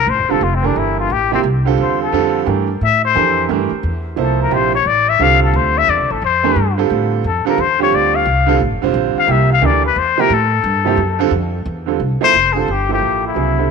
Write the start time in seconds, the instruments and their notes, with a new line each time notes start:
Already playing: muted trumpet A#4
0.07 upright bass A1, muted trumpet C5
0.19 upright bass F1
0.29 upright bass E1, grand piano D3 G3 C4 F4 A4, muted trumpet A4
0.41 upright bass F1, muted trumpet F4
0.55 muted trumpet C4
0.62 grand piano E3 D4 G4 A4 A#4
0.66 muted trumpet D4
0.76 upright bass G1, muted trumpet E4
1.00 muted trumpet F4
1.10 upright bass A1, muted trumpet G4
1.32 grand piano C3 F3 A#3 E4 G4, muted trumpet C4
1.43 upright bass C2
1.65 grand piano D3 G3 C4 F4 A4
1.78 upright bass E2, muted trumpet C5
2.02 muted trumpet A4
2.12 upright bass F2, grand piano D3 G3 C4 F4 A4
2.45 upright bass G2, grand piano E3 A3 D4 G4 A#4
2.81 upright bass A2, muted trumpet E5
3.05 muted trumpet C5
3.15 upright bass F2, grand piano E3 D4 G4 A4 A#4
3.49 upright bass G2, grand piano E3 A3 D4 G4 A#4
3.71 muted upright bass stroke
3.83 upright bass E2
4.16 upright bass C2, grand piano F3 A#3 E4 A4 C5
4.21 muted trumpet A4
4.42 muted trumpet A#4
4.51 upright bass A#1, grand piano C3 F3 A#3 E4 G4, muted trumpet C5
4.75 muted trumpet C#5
4.86 upright bass A1, muted trumpet D5
5.09 muted trumpet E5
5.19 upright bass C2, grand piano D3 G3 C4 F4 A4, muted trumpet F5
5.43 muted trumpet A4
5.54 upright bass D2, muted trumpet C5
5.78 muted trumpet E5
5.88 upright bass E2, muted trumpet D5
5.99 upright bass C2
6.10 upright bass A1, muted trumpet A4
6.22 upright bass F2, muted trumpet C5
6.43 grand piano E3 A3 D4 G4 A#4
6.56 upright bass G2
6.77 grand piano D3 G3 C4 F4 A4
6.90 upright bass A2
7.24 upright bass F2, muted trumpet A4
7.45 grand piano D3 G3 C4 F4 A4, muted trumpet A#4, muted upright bass stroke
7.58 upright bass E2, muted trumpet C5
7.79 grand piano D3 G3 C4 F4 G4, muted trumpet C#5
7.92 upright bass D2, muted trumpet D5
8.15 muted trumpet F5
8.25 upright bass C2
8.46 grand piano D3 G3 C4 F4 A4
8.60 upright bass A1
8.72 upright bass F1
8.82 upright bass E1, grand piano D3 G3 C4 F4 C5
8.94 upright bass A#1
9.15 muted trumpet F5, muted upright bass stroke
9.27 upright bass C2, grand piano C3 F3 A#3 E4 G4
9.31 muted trumpet E5
9.52 muted trumpet F5
9.61 upright bass D2, grand piano E3 A3 D4 G4 A#4, muted trumpet D5
9.86 muted trumpet B4
9.96 upright bass E2, muted trumpet C5
10.17 grand piano C3 F3 A#3 E4 G4, muted trumpet A#4
10.30 upright bass A2, muted trumpet A4
10.64 upright bass G2
10.85 grand piano C3 F3 A#3 E4 G4
10.97 upright bass F#2
11.19 grand piano D3 G3 C4 F4 A4
11.31 upright bass F2
11.65 upright bass E2
11.86 grand piano D3 G3 C4 F4 A4
12.00 upright bass C2
12.21 grand piano F3 A#3 E4 A4 C5, muted trumpet C5, muted upright bass stroke
12.33 upright bass F1
12.53 grand piano D3 G3 C4 F4 A4, muted trumpet G#4
12.59 muted trumpet A4
12.68 upright bass G1, muted trumpet G4
12.89 grand piano F3 A#3 E4 A4 C5, muted trumpet G4
13.02 upright bass A1
13.27 muted trumpet E4
13.35 upright bass C2, grand piano C#3 F#3 B3 E4 G#4
13.57 grand piano D3 G3 C4 E4 A4